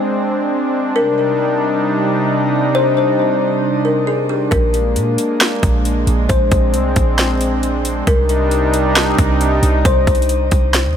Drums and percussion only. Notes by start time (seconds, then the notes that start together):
4.52 kick, closed hi-hat
4.74 closed hi-hat
4.96 closed hi-hat
5.18 closed hi-hat
5.41 snare, closed hi-hat
5.63 kick, closed hi-hat
5.85 closed hi-hat
6.07 closed hi-hat
6.30 kick, closed hi-hat
6.51 kick, closed hi-hat
6.74 closed hi-hat
6.96 kick, closed hi-hat
7.18 snare, closed hi-hat
7.41 closed hi-hat
7.63 closed hi-hat
7.85 closed hi-hat
8.07 kick, closed hi-hat
8.29 closed hi-hat
8.51 closed hi-hat
8.74 closed hi-hat
8.96 snare, closed hi-hat
9.18 kick, closed hi-hat
9.41 closed hi-hat
9.63 closed hi-hat
9.85 kick, closed hi-hat
10.07 kick, closed hi-hat
10.15 closed hi-hat
10.22 closed hi-hat
10.29 closed hi-hat
10.51 kick, closed hi-hat
10.74 snare, closed hi-hat